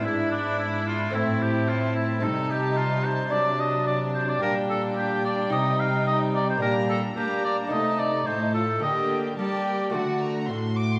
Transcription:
<<
  \new Staff \with { instrumentName = "Violin section" } { \time 4/4 \key a \phrygian \tempo 4 = 109 b''2 a''2~ | \key g \minor a''1 | g''1 | bes''4 bes''4 a''4 a''4 |
g''4 a''8 g''8 fis''8 bes''8 c'''8 d'''16 c'''16 | }
  \new Staff \with { instrumentName = "Oboe" } { \time 4/4 \key a \phrygian e'8 d'8 e'8 f'8 e'8 g'8 f'8 e'8 | \key g \minor a'8 g'8 f'8 c''8 d''8 ees''8 d''8 c''16 d''16 | bes'8 a'8 g'8 d''8 ees''8 f''8 ees''8 d''16 c''16 | bes'8 a'8 g'8 d''8 ees''8 d''8 c''8 a'8 |
ees''8. r16 d''2 r4 | }
  \new Staff \with { instrumentName = "Violin section" } { \time 4/4 \key a \phrygian e'1 | \key g \minor ees'2 d'2~ | d'2 ees'2 | d'4 d'4 ees'4 ees'8 f'8 |
g'4 g'4 fis'4. r8 | }
  \new Staff \with { instrumentName = "Lute" } { \time 4/4 \key a \phrygian <b d' e'>2 <a c' e'>2 | \key g \minor <c' ees'>2 d'2 | <d' g'>2 <ees' g'>2 | <bes d' g'>2 <a ees' a'>2 |
<g' bes'>2 <a fis' a'>2 | }
  \new Staff \with { instrumentName = "Lute" } { \clef bass \time 4/4 \key a \phrygian gis,2 a,2 | \key g \minor c1 | bes,2 c2 | bes,4 bes4 c4 a,4 |
d4 g4 d4 a,4 | }
  \new Staff \with { instrumentName = "Viola section" } { \time 4/4 \key a \phrygian d'2 c'2 | \key g \minor g2 fis2 | g1 | g4 g4 a4 a4 |
bes4 bes4 a4. r8 | }
  \new Staff \with { instrumentName = "Cello section" } { \clef bass \time 4/4 \key a \phrygian gis,2 a,2 | \key g \minor c1 | bes,2 c2 | bes,4 bes4 c4 a,4 |
d4 g4 d4 a,4 | }
>>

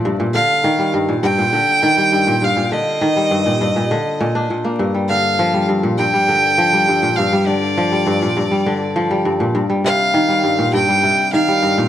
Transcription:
<<
  \new Staff \with { instrumentName = "Violin" } { \time 4/4 \key ees \lydian \tempo 4 = 101 r8 f''4 r8 g''2 | f''8 ees''2. r8 | r8 f''4 r8 g''2 | f''8 d''2. r8 |
r8 f''4. g''4 f''4 | }
  \new Staff \with { instrumentName = "Kora" } { \clef bass \time 4/4 \key ees \lydian g,16 bes,16 d8 ees16 g16 g,16 bes,16 g,16 bes,16 d8 ees16 g16 g,16 bes,16 | g,16 bes,16 d8 ees16 g16 g,16 bes,16 g,16 bes,16 d16 r16 bes,16 d'16 bes,16 bes16 | g,16 g16 d8 f16 g16 g,16 bes,16 g,16 g16 d8 f16 g16 g,16 bes,16 | g,16 g16 d8 f16 g16 g,16 bes,16 g,16 g16 d8 f16 g16 g,16 bes,16 |
g,16 g16 c8 ees16 g16 g,16 bes,16 g,16 g16 c8 ees16 g16 g,16 bes,16 | }
>>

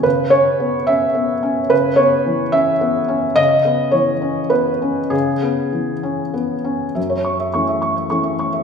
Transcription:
<<
  \new Staff \with { instrumentName = "Felt piano" } { \time 3/4 \key cis \minor \tempo 4 = 106 b'8 cis''4 e''4. | b'8 cis''4 e''4. | dis''4 cis''4 b'4 | gis'2 r4 |
e''16 cis''16 cis'''16 e''16 cis'''16 e''16 cis'''16 e''16 cis'''16 e''16 cis'''16 e''16 | }
  \new Staff \with { instrumentName = "Felt piano" } { \time 3/4 \key cis \minor cis8 cis'8 b8 cis'8 b8 cis'8 | cis8 b8 e8 cis'8 b8 cis'8 | cis8 b8 e8 cis'8 b8 cis'8 | cis8 b8 e8 cis'8 b8 cis'8 |
fis,4 <e a cis'>4 <e a cis'>4 | }
>>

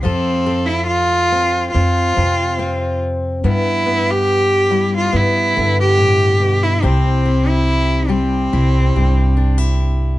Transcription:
<<
  \new Staff \with { instrumentName = "Cello" } { \time 4/4 \key c \major \tempo 4 = 71 c'8. e'16 f'4 f'4. r8 | e'8. g'4 f'16 e'8. g'4 e'16 | c'8. e'8. c'2 r8 | }
  \new Staff \with { instrumentName = "Steel-string acoustic guitar" } { \time 4/4 \key c \major << { <f' a'>8 a'4. c'8 c'8 c'4 | b8 b4 e'8 b8 b4. | <c' e' g'>8 e'4 g'8 e'8 g'8 d'16 e'8. | } \\ { f4. c'8 r8 c4. | g,4. g4 d8 a,8 b,8 | c4. g4 g,4. | } >> }
  \new Staff \with { instrumentName = "Upright bass" } { \clef bass \time 4/4 \key c \major f,2 f,8 f,4. | g,2 g,8 g,4. | c,2 c,8 c,4. | }
>>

